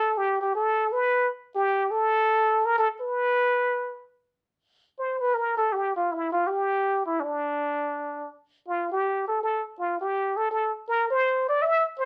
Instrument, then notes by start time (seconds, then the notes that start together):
muted trumpet
Already playing: A4
0.17 G4
0.41 G4
0.55 A4
0.93 B4
1.55 G4
1.91 A4
2.65 A#4
2.78 A4
3.01 B4
4.99 C5
5.21 B4
5.34 A#4
5.57 A4
5.72 G4
5.96 F4
6.11 E4
6.32 F4
6.47 G4
7.06 E4
7.20 D4
8.68 F4
8.92 G4
9.28 A4
9.43 A4
9.78 F4
10.01 G4
10.37 A4
10.51 A4
10.88 A#4
11.10 C5
11.49 D5
11.62 E5
11.99 C5